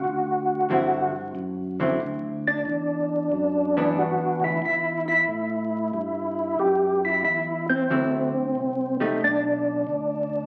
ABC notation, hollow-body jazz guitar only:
X:1
M:4/4
L:1/8
Q:"Swing" 1/4=92
K:Dmix
V:1 name="Hollow-body jazz guitar"
z2 [D,F,CE] z2 [D,F,CE] z2 | z3 [E,B,D]3 z2 | z8 | [D,F,CE] z2 [G,A,_E] z4 |]